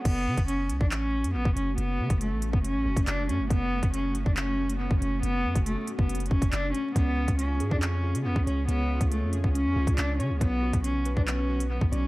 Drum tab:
CC |x-------------------------------|--------------------------------|--------------------------------|--------------------------------|
HH |x-----x-x---x---x-----x-----x---|x-----x-x---x---x-----x-x---x---|x-----x-x---x---x-----x-----x---|x-----x-x---x---xxxx--x-x---x---|
CP |----------------x---------------|------------------------x-------|----------------x---------------|------------------------x-------|
BD |o-----o-------o-----------o-----|------o-------o-------o---------|o-----o-------o-----------o-----|------o-------o-----o-o---------|

CC |--------------------------------|--------------------------------|--------------------------------|
HH |x-----x-x---x---x-----x-----x---|x-----x-x---x---x-----x-x---x---|x-----x-x---x---x-----x-----x---|
CP |----------------x---------------|------------------------x-------|----------------x---------------|
BD |o-----o-------o-----------o-----|------o-------o-------o---------|o-----o-------o-----------o-----|